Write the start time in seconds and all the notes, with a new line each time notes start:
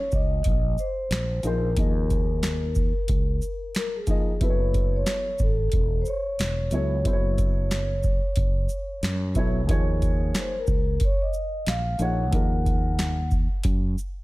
Already playing: C#5
0.12 C#2 D#5, kick, shaker
0.44 A#1, kick, closed hi-hat
0.78 C5, shaker
1.11 A#1, snare, closed hi-hat
1.43 A#1 F3 A#3 D#4 G#4 A#4 C5, closed hi-hat, shaker
1.76 D#2 F3 A#3 D#4 G#4 D#5, kick, closed hi-hat
2.10 kick, closed hi-hat, shaker
2.43 snare, closed hi-hat
2.75 kick, shaker
3.08 C#2, kick, closed hi-hat
3.42 shaker
3.75 A#4, snare, closed hi-hat
3.96 G#4
4.07 F3 A#3 D#4 G#4 D#5, kick, closed hi-hat, shaker
4.40 F#1 F#3 B3 E4 A4 B4, kick, closed hi-hat
4.50 C#5
4.74 kick, closed hi-hat, shaker
4.96 C#5
5.06 snare, closed hi-hat
5.39 G#1 A4, kick, shaker
5.72 E1, kick, closed hi-hat
6.01 C5
6.05 C#5, shaker
6.39 E1, snare, closed hi-hat
6.71 C#2 F#3 B3 E4 A4 C#5, closed hi-hat, shaker
7.03 F#1 F#3 B3 E4 A4 C5, kick, closed hi-hat
7.13 C#5
7.38 kick, closed hi-hat, shaker
7.71 snare, closed hi-hat
8.03 kick, shaker
8.36 F#1, kick, closed hi-hat
8.69 shaker
9.03 F#2, snare, closed hi-hat
9.35 B1 F#3 B3 E4 A4 C#5, kick, closed hi-hat, shaker
9.67 D#2 F3 A#3 D#4 G#4 C#5, kick, closed hi-hat
10.02 kick, closed hi-hat, shaker
10.35 snare, closed hi-hat
10.39 C5
10.59 A#4
10.67 C#2, kick, shaker
11.00 kick, closed hi-hat
11.04 C#5
11.22 D#5
11.33 shaker
11.67 A#1 F5, snare, closed hi-hat
11.98 A#1 F3 A#3 D#4 G#4 C#5 F#5, closed hi-hat, shaker
12.31 D#2 F3 A#3 D#4 G#4 A#4, kick, closed hi-hat
12.66 kick, closed hi-hat, shaker
12.99 snare, closed hi-hat
13.31 kick, shaker
13.64 F#2, kick, closed hi-hat
13.98 shaker